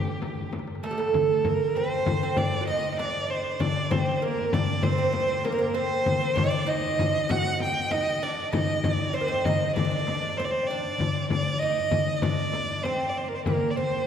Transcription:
Already playing: oud G3, violin G4
0.07 darbuka ka
0.22 darbuka tek, frame drum
0.38 darbuka ka
0.52 darbuka tek, frame drum
0.59 darbuka ka
0.68 darbuka tek
0.75 darbuka ka
0.83 oud A3, violin A4, darbuka tek
0.91 oud G3, darbuka ka
0.98 oud A3, darbuka tek
1.07 darbuka ka
1.14 darbuka dum, frame drum
1.44 violin A#4, frame drum, darbuka dum
1.75 oud C4, violin C5
2.06 frame drum, darbuka dum
2.23 oud C4
2.36 oud D4, violin D5, darbuka dum, frame drum
2.61 oud F#4
2.67 oud D#4, violin D#5, darbuka tek
2.83 darbuka ka
2.92 oud D#4
2.98 oud D4, violin D5, darbuka tek, frame drum
3.30 violin C5
3.60 oud D4, violin D5, darbuka dum, frame drum
3.91 oud C4, violin C5, darbuka dum, frame drum
4.17 violin C5
4.22 oud A#3, violin A#4
4.53 oud D4, violin D5, frame drum, darbuka dum
4.83 oud C4, violin C5, frame drum, darbuka dum
4.93 oud C4
4.98 oud C4
5.05 oud C4
5.12 oud C4, darbuka tek, frame drum
5.20 oud C4
5.28 oud C4, darbuka ka
5.44 oud A#3, violin A#4, darbuka tek, frame drum
5.52 oud C4
5.59 oud A#3
5.74 oud C4, violin C5
6.06 darbuka dum, frame drum
6.21 oud C4
6.36 oud D4, violin D5, frame drum, darbuka dum
6.44 oud D#4
6.51 oud D4
6.67 oud D#4, violin D#5
6.99 darbuka dum, frame drum
7.29 oud F#4, violin F#5, darbuka dum, frame drum
7.60 violin G5, darbuka tek, frame drum
7.76 darbuka ka
7.91 oud D#4, violin D#5, darbuka tek, frame drum
8.23 oud D4, violin D5
8.53 oud D#4, violin D#5, frame drum, darbuka dum
8.83 violin D5, darbuka dum, frame drum
9.13 oud C4, violin C5
9.21 oud A#3
9.28 oud C4
9.45 oud D#4, violin D#5, frame drum, darbuka dum
9.76 oud D4, violin D5, darbuka dum, frame drum
9.85 oud D4
9.91 oud D4, darbuka ka
9.99 oud D4
10.07 oud D4, darbuka tek, frame drum
10.15 oud D4
10.22 oud D4
10.37 oud C4, violin C5, darbuka tek, frame drum
10.44 violin D5
10.51 violin C5, darbuka ka
10.67 oud D4, violin D5, darbuka ka
10.83 darbuka ka
10.98 darbuka dum, frame drum
11.30 violin D5, darbuka dum, frame drum
11.59 oud D#4, violin D#5
11.91 darbuka dum, frame drum
12.16 violin D#5
12.22 oud D4, violin D5, frame drum, darbuka dum
12.53 darbuka tek, frame drum
12.71 darbuka ka
12.83 oud C4, violin C5, darbuka tek, frame drum
13.09 violin D5
13.17 violin C5
13.28 violin A#4
13.35 violin C5
13.45 oud A#3, violin A#4, frame drum, darbuka dum
13.70 violin D5
13.76 oud C4, violin C5, darbuka dum

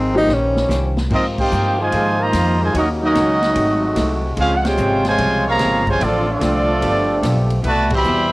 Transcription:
Already playing: upright bass G#1, trombone section D#3 F3 G#3 D#4, hollow-body jazz guitar F3 C4 D#4 G#4, tenor saxophone C4
0.14 grand piano F3 A#3 D#4 G4, tenor saxophone D#4
0.27 upright bass A#1, hollow-body jazz guitar D#3 C#4 G4 C5, trombone section F3 G3 C#4, snare
0.34 tenor saxophone C#4
0.56 snare
0.69 upright bass C2, hollow-body jazz guitar D#3 C#4 G4 C5, snare, hi-hat pedal
0.97 snare
1.09 hollow-body jazz guitar G#2 F3 A#3 C4, upright bass G#2, trombone section C3 F3 A#3 C4 D#4 F4, trumpet section C4 F4 A#4 D#5, kick, crash
1.38 trombone section C4 D#4 G4, trumpet section F4 C5 D#5 G5, kick, crash
1.51 upright bass G2, hollow-body jazz guitar G#2 F3 A#3 C4, hi-hat pedal
1.79 trombone section D#3 F3 G#3, trumpet section F4 C5 D#5 G#5
1.91 hollow-body jazz guitar G#2 F3 A#3 C4, upright bass G#2, kick, ride
2.20 trombone section D#3 F3 A#3, trumpet section F4 C5 D#5 A#5
2.32 upright bass F2, hollow-body jazz guitar G#2 F3 A#3 C4, kick, snare, hi-hat pedal, ride
2.60 trombone section D#3 F3 G#3, trumpet section F4 C5 D#5 G#5
2.73 upright bass D#2, trombone section C#3 F#3 A#3 D#4, hollow-body jazz guitar D#3 A#3 C#4 F#4, trumpet section C#4 F#4 A#4 D#5, kick, ride
3.02 trombone section F#3 A#3 D#4, trumpet section C#4 F#4 A#4
3.06 trumpet section D#5
3.14 upright bass C#2, hollow-body jazz guitar D#3 A#3 C#4 F#4, kick, snare, hi-hat pedal, ride
3.42 snare, ride
3.54 upright bass G#1, hollow-body jazz guitar G#2 F#3 A3 C4, trombone section C3 G#3 A3 F#4, kick, ride
3.95 upright bass C2, hollow-body jazz guitar G#2 F#3 A3 C4, kick, snare, hi-hat pedal, ride
4.36 upright bass C#2, trombone section C3 G#3 C4 F4, hollow-body jazz guitar C#3 F3 G#3 C4, trumpet section C#4 G#4 C5, kick, ride
4.40 trumpet section F5
4.56 trumpet section F#5
4.65 trombone section C3 G#3 G4, trumpet section F4 C5 C#5 G5, snare, ride
4.77 upright bass G#1, hollow-body jazz guitar C#3 F3 G#3 C4, hi-hat pedal
5.05 trombone section C3 F3 G#3, trumpet section F4 C5 C#5 G#5, snare, ride
5.18 upright bass C2, hollow-body jazz guitar C#3 F3 G#3 C4, kick, ride
5.48 trombone section C3 F3 A#3, trumpet section G#4 C#5 F5 A#5
5.59 upright bass G1, hollow-body jazz guitar C#3 F3 G#3 C4, kick, snare, hi-hat pedal, ride
5.87 trombone section C3 F3 G#3, trumpet section F4 C5 C#5 G#5, kick, ride
5.99 upright bass A1, hollow-body jazz guitar D3 A3 C4 F4, trombone section D3 F3 A3 D4, kick, ride
6.03 trumpet section C4 F4 A4 D5
6.29 trombone section F3 A3 D4, trumpet section C4 F4 A4 D5
6.40 upright bass C2, hollow-body jazz guitar D3 A3 C4 F4, kick, snare, hi-hat pedal, ride
6.81 upright bass G1, trombone section B2 F3 G4, hollow-body jazz guitar G3 B3 F4 A4, kick, ride
7.23 upright bass B1, hollow-body jazz guitar G3 B3 F4 A4, kick, snare, hi-hat pedal, ride
7.50 ride
7.62 upright bass C2, hollow-body jazz guitar C3 G3 B3 E4, trombone section E3 G3 A3 E4, trumpet section F#4 B4 D5 A5, kick, ride
7.90 trombone section B2 E3 G3, trumpet section G4 C5, kick, crash
7.95 trumpet section E5 B5
8.04 upright bass E2, hollow-body jazz guitar C3 G3 B3 E4, hi-hat pedal

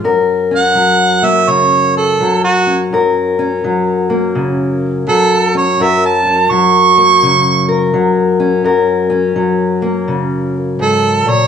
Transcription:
0.04 steel-string acoustic guitar F#2 A#4
0.51 steel-string acoustic guitar C#4
0.56 harmonica F#5
0.75 steel-string acoustic guitar F#3
1.22 steel-string acoustic guitar A#3, harmonica E5
1.48 steel-string acoustic guitar C#3, harmonica C#5
1.97 harmonica A4
2.20 steel-string acoustic guitar F#3
2.44 harmonica F#4
2.67 steel-string acoustic guitar C#4
2.93 steel-string acoustic guitar F#2 A#4
3.39 steel-string acoustic guitar C#4
3.64 steel-string acoustic guitar F#3
4.10 steel-string acoustic guitar A#3
4.35 steel-string acoustic guitar C#3
5.07 steel-string acoustic guitar F#3, harmonica A4
5.55 steel-string acoustic guitar C#4, harmonica C#5
5.80 steel-string acoustic guitar F#2 A#4, harmonica E5
6.06 harmonica A5
6.25 steel-string acoustic guitar C#4
6.51 steel-string acoustic guitar F#3, harmonica C#6
6.98 steel-string acoustic guitar A#3
7.23 steel-string acoustic guitar C#3
7.68 steel-string acoustic guitar A#4
7.94 steel-string acoustic guitar F#3
8.40 steel-string acoustic guitar C#4
8.64 steel-string acoustic guitar F#2 A#4
9.10 steel-string acoustic guitar C#4
9.36 steel-string acoustic guitar F#3
9.82 steel-string acoustic guitar A#3
10.08 steel-string acoustic guitar C#3
10.79 steel-string acoustic guitar G#2, harmonica A4
11.26 steel-string acoustic guitar A#2
11.30 harmonica C#5

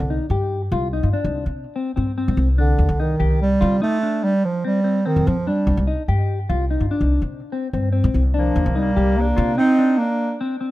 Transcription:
Already playing: bass clarinet D3
0.00 upright bass C2
0.10 clean electric guitar D#4
0.30 upright bass G2, clean electric guitar G4
0.72 upright bass C2, clean electric guitar F4
0.93 clean electric guitar D#4
1.03 upright bass G2
1.13 clean electric guitar D4
1.24 upright bass C2
1.46 upright bass C3
1.76 clean electric guitar C4
1.96 upright bass G2, clean electric guitar C4
2.18 clean electric guitar C4
2.28 upright bass C2
2.37 upright bass C2
2.58 bass clarinet D3, clean electric guitar D4
2.78 upright bass D#2
2.89 upright bass C2
3.00 bass clarinet D#3, clean electric guitar D#4
3.20 upright bass C2, clean electric guitar G4
3.42 bass clarinet G3
3.61 upright bass C3, clean electric guitar F4
3.82 bass clarinet A3, clean electric guitar D#4
4.03 clean electric guitar D4
4.24 bass clarinet G3
4.45 bass clarinet F3
4.64 bass clarinet G3, clean electric guitar C4
4.84 clean electric guitar C4
5.05 bass clarinet D#3, clean electric guitar C4
5.16 upright bass F2
5.27 upright bass F2, bass clarinet F3
5.47 bass clarinet G3, clean electric guitar D4
5.67 upright bass C2
5.77 upright bass C2
5.87 clean electric guitar D#4
6.08 upright bass G2, clean electric guitar G4
6.49 upright bass C2, clean electric guitar F4
6.71 clean electric guitar D#4
6.80 upright bass G2
6.91 clean electric guitar D4
7.01 upright bass C2
7.22 upright bass C3
7.52 clean electric guitar C4
7.73 upright bass G2, clean electric guitar C4
7.92 clean electric guitar C4
8.04 upright bass C2
8.14 upright bass C2
8.34 bass clarinet F3, clean electric guitar D4
8.39 alto saxophone A#3
8.56 upright bass D#2
8.66 upright bass C2
8.75 bass clarinet G3, clean electric guitar D#4
8.80 alto saxophone A#3
8.96 upright bass C2, clean electric guitar G4
9.17 bass clarinet A#3, alto saxophone D4
9.36 upright bass C3, clean electric guitar F4
9.57 bass clarinet C4, clean electric guitar D#4, alto saxophone D#4
9.78 clean electric guitar D4
9.98 bass clarinet A#3, alto saxophone D4
10.41 clean electric guitar C4
10.61 clean electric guitar C4

